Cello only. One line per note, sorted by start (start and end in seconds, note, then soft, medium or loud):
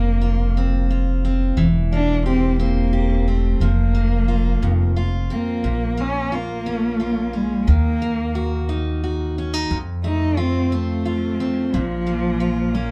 0.00 0.91 A#3 medium
1.93 2.24 D4 medium
2.27 2.58 C4 medium
2.61 3.31 A#3 medium
3.29 3.64 A3 medium
3.63 4.97 A#3 medium
5.32 6.02 A#3 medium
6.00 6.36 C#4 medium
6.35 7.37 A#3 medium
7.36 7.71 G#3 medium
7.69 8.70 A#3 medium
10.05 10.40 D#4 medium
10.39 10.75 C4 medium
10.73 11.76 A3 medium
11.75 12.77 F3 medium
12.75 12.91 A#3 medium